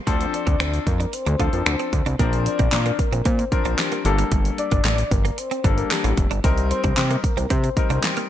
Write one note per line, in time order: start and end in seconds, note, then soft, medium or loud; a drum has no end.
0.07 0.26 D2 loud
0.07 0.88 F3 medium
0.07 0.88 C4 medium
0.07 0.14 D4 medium
0.07 0.88 D4 medium
0.07 0.88 A4 loud
0.07 kick loud
0.07 closed hi-hat medium
0.21 closed hi-hat medium
0.33 0.83 D5 loud
0.33 muted clean electric guitar stroke soft
0.33 closed hi-hat medium
0.47 0.57 D2 loud
0.47 0.54 C4 medium
0.47 kick medium
0.47 closed hi-hat soft
0.60 0.79 D2 medium
0.60 0.67 C4 medium
0.60 finger snap loud
0.60 closed hi-hat medium
0.74 closed hi-hat medium
0.87 1.06 F2 loud
0.87 1.15 A#4 medium
0.87 muted clean electric guitar stroke soft
0.87 kick medium
0.87 closed hi-hat medium
1.00 1.07 D4 medium
1.00 closed hi-hat medium
1.13 1.55 C5 loud
1.13 muted clean electric guitar stroke soft
1.13 closed hi-hat medium
1.26 1.36 D2 medium
1.26 1.34 D4 medium
1.26 closed hi-hat soft
1.40 1.49 D2 medium
1.40 2.00 F3 medium
1.40 2.00 C4 medium
1.40 2.01 D4 medium
1.40 1.47 F4 medium
1.40 2.01 A4 medium
1.40 kick medium
1.40 closed hi-hat medium
1.53 1.63 F2 medium
1.53 1.68 A#4 medium
1.53 closed hi-hat medium
1.66 1.76 D2 loud
1.66 2.06 C5 medium
1.66 finger snap loud
1.66 closed hi-hat medium
1.79 1.87 C4 medium
1.79 closed hi-hat medium
1.93 2.02 D2 loud
1.93 muted clean electric guitar stroke soft
1.93 kick medium
1.93 closed hi-hat medium
2.06 2.16 C2 loud
2.06 2.14 D4 medium
2.06 closed hi-hat medium
2.19 2.48 A#1 loud
2.19 3.00 F3 medium
2.19 2.27 A#3 medium
2.19 3.00 C4 medium
2.19 3.01 D4 medium
2.19 3.01 A#4 loud
2.19 kick loud
2.19 closed hi-hat medium
2.33 closed hi-hat medium
2.46 3.01 D5 loud
2.46 muted clean electric guitar stroke soft
2.46 closed hi-hat medium
2.59 2.69 A#1 loud
2.59 2.67 C4 medium
2.59 kick loud
2.59 closed hi-hat soft
2.72 2.92 A#2 medium
2.72 snare medium
2.72 clap loud
2.72 closed hi-hat medium
2.86 2.93 A#3 medium
2.86 closed hi-hat soft
2.99 3.28 A#4 loud
2.99 muted clean electric guitar stroke soft
2.99 kick medium
2.99 closed hi-hat medium
3.12 3.22 A#1 medium
3.12 3.20 C4 medium
3.12 closed hi-hat medium
3.25 3.45 A#2 loud
3.25 3.33 C4 medium
3.25 3.66 C5 loud
3.25 kick medium
3.25 closed hi-hat medium
3.39 muted clean electric guitar stroke soft
3.39 closed hi-hat soft
3.52 4.05 F3 medium
3.52 4.05 C4 medium
3.52 4.04 D4 medium
3.52 4.05 A#4 medium
3.52 kick medium
3.52 closed hi-hat medium
3.65 3.75 A#1 medium
3.65 3.73 D4 medium
3.65 3.72 C5 medium
3.65 closed hi-hat medium
3.78 4.16 G4 medium
3.78 snare medium
3.78 clap loud
3.78 closed hi-hat medium
3.92 3.99 A#3 medium
3.92 closed hi-hat medium
4.05 4.24 G1 loud
4.05 4.90 G3 medium
4.05 4.90 A#3 medium
4.05 4.90 D4 medium
4.05 4.90 A4 medium
4.05 muted clean electric guitar stroke soft
4.05 closed hi-hat medium
4.18 4.26 A#3 medium
4.18 closed hi-hat medium
4.32 4.51 G1 loud
4.32 4.39 A3 medium
4.32 kick loud
4.32 closed hi-hat medium
4.45 closed hi-hat medium
4.58 5.13 D5 loud
4.58 muted clean electric guitar stroke soft
4.58 closed hi-hat medium
4.71 4.81 G1 medium
4.71 4.79 A#3 medium
4.71 kick medium
4.71 closed hi-hat soft
4.85 5.04 A1 medium
4.85 4.92 A3 medium
4.85 snare medium
4.85 clap loud
4.85 closed hi-hat medium
4.98 closed hi-hat medium
5.11 5.31 G1 medium
5.11 5.40 A#4 loud
5.11 muted clean electric guitar stroke soft
5.11 kick loud
5.11 closed hi-hat medium
5.25 5.32 A#3 medium
5.25 closed hi-hat medium
5.38 5.78 C5 loud
5.38 muted clean electric guitar stroke soft
5.38 closed hi-hat medium
5.51 5.59 C4 medium
5.51 closed hi-hat soft
5.64 5.84 G1 medium
5.64 6.25 G3 medium
5.64 6.25 A#3 medium
5.64 5.72 D4 medium
5.64 6.25 D4 medium
5.64 6.25 A4 medium
5.64 kick loud
5.64 closed hi-hat medium
5.78 5.93 A#4 medium
5.78 closed hi-hat soft
5.91 6.31 G4 medium
5.91 snare medium
5.91 clap loud
5.91 closed hi-hat medium
6.04 6.14 A1 loud
6.04 6.12 A#3 medium
6.04 closed hi-hat medium
6.17 6.27 F1 loud
6.17 muted clean electric guitar stroke soft
6.17 kick medium
6.17 closed hi-hat medium
6.31 6.40 G1 medium
6.31 6.38 D4 medium
6.31 closed hi-hat medium
6.44 6.73 C2 loud
6.44 7.25 G3 medium
6.44 6.51 C4 medium
6.44 7.25 C4 medium
6.44 7.25 D#4 medium
6.44 7.25 A#4 loud
6.44 kick loud
6.44 closed hi-hat medium
6.58 closed hi-hat medium
6.71 7.20 C5 loud
6.71 muted clean electric guitar stroke soft
6.71 closed hi-hat medium
6.84 6.94 C2 medium
6.84 6.91 D4 medium
6.84 kick medium
6.84 closed hi-hat soft
6.97 7.16 C3 loud
6.97 snare medium
6.97 clap loud
6.97 closed hi-hat medium
7.11 7.18 A#3 medium
7.11 closed hi-hat medium
7.24 7.52 A#4 loud
7.24 muted clean electric guitar stroke soft
7.24 kick medium
7.24 closed hi-hat medium
7.37 7.47 C2 medium
7.37 7.44 C4 medium
7.37 closed hi-hat medium
7.50 7.70 C3 loud
7.50 7.58 C4 medium
7.50 7.90 C5 loud
7.50 kick medium
7.50 closed hi-hat medium
7.64 muted clean electric guitar stroke soft
7.64 closed hi-hat soft
7.77 8.29 G3 medium
7.77 8.29 C4 medium
7.77 8.29 D#4 medium
7.77 8.29 A#4 medium
7.77 kick loud
7.77 closed hi-hat medium
7.90 8.00 C2 medium
7.90 7.98 D4 medium
7.90 8.03 C5 loud
7.90 closed hi-hat soft
8.03 8.29 G4 medium
8.03 snare medium
8.03 clap loud
8.03 closed hi-hat medium
8.17 8.24 A#3 medium
8.17 closed hi-hat medium